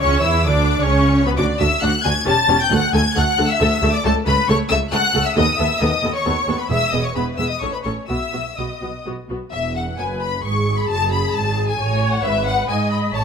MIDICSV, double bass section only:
0, 0, Header, 1, 2, 480
1, 0, Start_track
1, 0, Tempo, 449775
1, 12, Time_signature, 3, 2, 24, 8
1, 3372, Tempo, 442804
1, 7212, Tempo, 471698
1, 10092, Tempo, 451467
1, 14037, End_track
2, 0, Start_track
2, 0, Title_t, "Double bass section"
2, 0, Program_c, 0, 48
2, 19, Note_on_c, 0, 37, 105
2, 252, Note_off_c, 0, 37, 0
2, 258, Note_on_c, 0, 40, 97
2, 494, Note_off_c, 0, 40, 0
2, 502, Note_on_c, 0, 38, 107
2, 865, Note_off_c, 0, 38, 0
2, 868, Note_on_c, 0, 37, 93
2, 1338, Note_off_c, 0, 37, 0
2, 1469, Note_on_c, 0, 38, 94
2, 1555, Note_off_c, 0, 38, 0
2, 1711, Note_on_c, 0, 38, 91
2, 1796, Note_off_c, 0, 38, 0
2, 1948, Note_on_c, 0, 38, 97
2, 2034, Note_off_c, 0, 38, 0
2, 2185, Note_on_c, 0, 38, 82
2, 2270, Note_off_c, 0, 38, 0
2, 2420, Note_on_c, 0, 28, 84
2, 2505, Note_off_c, 0, 28, 0
2, 2657, Note_on_c, 0, 28, 88
2, 2742, Note_off_c, 0, 28, 0
2, 2894, Note_on_c, 0, 38, 101
2, 2980, Note_off_c, 0, 38, 0
2, 3133, Note_on_c, 0, 38, 91
2, 3219, Note_off_c, 0, 38, 0
2, 3376, Note_on_c, 0, 38, 102
2, 3463, Note_off_c, 0, 38, 0
2, 3615, Note_on_c, 0, 38, 86
2, 3702, Note_off_c, 0, 38, 0
2, 3854, Note_on_c, 0, 38, 89
2, 3941, Note_off_c, 0, 38, 0
2, 4094, Note_on_c, 0, 38, 97
2, 4180, Note_off_c, 0, 38, 0
2, 4335, Note_on_c, 0, 37, 99
2, 4422, Note_off_c, 0, 37, 0
2, 4572, Note_on_c, 0, 37, 95
2, 4659, Note_off_c, 0, 37, 0
2, 4810, Note_on_c, 0, 37, 99
2, 4896, Note_off_c, 0, 37, 0
2, 5055, Note_on_c, 0, 37, 81
2, 5142, Note_off_c, 0, 37, 0
2, 5286, Note_on_c, 0, 37, 88
2, 5373, Note_off_c, 0, 37, 0
2, 5531, Note_on_c, 0, 37, 87
2, 5618, Note_off_c, 0, 37, 0
2, 5770, Note_on_c, 0, 39, 107
2, 5857, Note_off_c, 0, 39, 0
2, 6013, Note_on_c, 0, 39, 90
2, 6100, Note_off_c, 0, 39, 0
2, 6249, Note_on_c, 0, 39, 91
2, 6335, Note_off_c, 0, 39, 0
2, 6492, Note_on_c, 0, 39, 82
2, 6579, Note_off_c, 0, 39, 0
2, 6730, Note_on_c, 0, 39, 81
2, 6817, Note_off_c, 0, 39, 0
2, 6969, Note_on_c, 0, 39, 80
2, 7056, Note_off_c, 0, 39, 0
2, 7212, Note_on_c, 0, 28, 89
2, 7293, Note_off_c, 0, 28, 0
2, 7446, Note_on_c, 0, 28, 75
2, 7527, Note_off_c, 0, 28, 0
2, 7679, Note_on_c, 0, 28, 73
2, 7760, Note_off_c, 0, 28, 0
2, 7918, Note_on_c, 0, 28, 62
2, 7999, Note_off_c, 0, 28, 0
2, 8150, Note_on_c, 0, 33, 62
2, 8231, Note_off_c, 0, 33, 0
2, 8388, Note_on_c, 0, 33, 57
2, 8469, Note_off_c, 0, 33, 0
2, 8633, Note_on_c, 0, 35, 70
2, 8715, Note_off_c, 0, 35, 0
2, 8881, Note_on_c, 0, 35, 58
2, 8963, Note_off_c, 0, 35, 0
2, 9132, Note_on_c, 0, 35, 65
2, 9213, Note_off_c, 0, 35, 0
2, 9376, Note_on_c, 0, 35, 56
2, 9458, Note_off_c, 0, 35, 0
2, 9617, Note_on_c, 0, 35, 52
2, 9699, Note_off_c, 0, 35, 0
2, 9857, Note_on_c, 0, 35, 53
2, 9939, Note_off_c, 0, 35, 0
2, 10099, Note_on_c, 0, 28, 72
2, 10547, Note_off_c, 0, 28, 0
2, 10584, Note_on_c, 0, 30, 71
2, 11061, Note_off_c, 0, 30, 0
2, 11067, Note_on_c, 0, 32, 66
2, 11534, Note_off_c, 0, 32, 0
2, 11548, Note_on_c, 0, 30, 77
2, 12012, Note_off_c, 0, 30, 0
2, 12026, Note_on_c, 0, 32, 78
2, 12487, Note_off_c, 0, 32, 0
2, 12501, Note_on_c, 0, 33, 77
2, 12961, Note_off_c, 0, 33, 0
2, 12974, Note_on_c, 0, 32, 93
2, 13438, Note_off_c, 0, 32, 0
2, 13449, Note_on_c, 0, 44, 77
2, 13922, Note_off_c, 0, 44, 0
2, 13933, Note_on_c, 0, 33, 68
2, 14037, Note_off_c, 0, 33, 0
2, 14037, End_track
0, 0, End_of_file